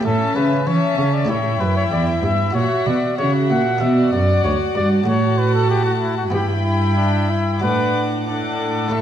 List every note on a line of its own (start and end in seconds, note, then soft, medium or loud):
0.00 0.32 A2 soft
0.00 1.23 A3 soft
0.00 1.24 C#4 soft
0.00 1.25 E4 soft
0.00 0.62 A5 medium
0.04 0.34 A2 medium
0.04 0.63 C#4 medium
0.04 0.37 A4 medium
0.04 0.63 E5 soft
0.36 0.67 C#3 medium
0.36 0.64 C#3 soft
0.36 0.69 B4 medium
0.67 0.95 E3 soft
0.67 0.76 E3 medium
0.67 1.28 C#4 medium
0.67 0.97 C#5 medium
0.67 1.28 E5 medium
0.67 1.28 A5 medium
0.98 1.26 C#3 soft
0.98 1.29 C#3 medium
0.98 1.15 C#5 medium
1.14 1.31 D5 medium
1.25 2.49 A3 soft
1.25 2.49 E4 soft
1.25 2.50 G4 soft
1.25 2.54 G5 soft
1.29 1.58 A2 medium
1.29 1.60 A2 medium
1.29 2.55 E4 medium
1.29 1.62 C#5 medium
1.29 2.53 E5 medium
1.60 1.89 F#2 soft
1.60 1.92 F#2 medium
1.60 1.76 B4 medium
1.77 1.84 C#5 medium
1.91 2.20 E2 soft
1.91 2.23 E2 medium
1.91 2.06 D5 medium
2.23 2.51 G2 soft
2.23 2.55 G2 medium
2.23 2.54 E5 medium
2.51 2.83 A#2 soft
2.51 3.74 E4 soft
2.51 3.75 F#4 soft
2.55 2.63 A#2 medium
2.55 3.16 F#4 medium
2.55 2.88 C#5 medium
2.55 3.16 E5 medium
2.55 3.16 F#5 medium
2.86 2.94 B2 medium
2.86 3.14 B2 soft
2.86 3.18 D5 medium
3.17 3.48 C#3 medium
3.17 3.46 C#3 soft
3.17 3.79 F#4 medium
3.17 3.32 C#5 medium
3.17 3.79 E5 soft
3.17 3.78 F#5 soft
3.49 3.80 A#2 medium
3.49 3.78 A#2 medium
3.49 3.82 F#5 medium
3.78 4.12 B2 medium
3.78 4.09 B2 soft
3.78 5.01 D4 soft
3.78 5.04 F#4 medium
3.78 5.02 F#4 soft
3.78 5.06 D5 medium
3.78 4.12 E5 medium
3.78 5.03 F#5 soft
4.12 4.43 F#2 medium
4.12 4.41 F#2 soft
4.12 4.43 D5 medium
4.43 4.51 D2 medium
4.43 4.72 D2 soft
4.43 4.58 C#5 medium
4.75 5.03 G2 medium
4.75 5.06 G2 medium
4.75 4.90 D5 medium
5.04 6.29 A2 soft
5.04 6.29 A2 medium
5.04 6.27 A3 soft
5.04 6.28 F#4 soft
5.04 6.28 F#4 medium
5.04 5.40 C#5 medium
5.04 6.28 F#5 medium
5.04 6.28 A5 medium
5.38 5.54 B4 medium
5.55 5.69 A4 medium
5.70 5.85 G4 medium
5.86 5.93 F#4 medium
6.02 6.17 E4 medium
6.18 6.25 F#4 medium
6.30 7.58 G2 soft
6.30 7.62 G2 medium
6.30 7.57 B3 soft
6.30 7.61 E4 medium
6.30 7.57 E4 soft
6.30 6.47 G4 medium
6.30 7.62 G5 medium
6.30 7.59 B5 soft
6.64 6.96 E4 medium
6.97 7.32 D4 medium
7.30 7.62 E4 medium
7.60 9.02 A2 medium
7.60 9.02 A2 soft
7.60 8.87 D4 soft
7.60 8.26 D4 medium
7.60 8.88 F#4 soft
7.60 8.04 B4 medium
7.60 8.26 F#5 soft
7.60 8.26 D6 soft
8.27 8.91 D4 medium
8.27 9.02 A4 medium
8.27 8.91 F#5 soft
8.27 8.91 D6 soft
8.88 9.02 A3 soft
8.88 9.02 C#4 soft
8.88 9.02 E4 soft
8.88 9.02 E4 medium
8.88 9.02 C#6 soft
8.92 9.02 E5 medium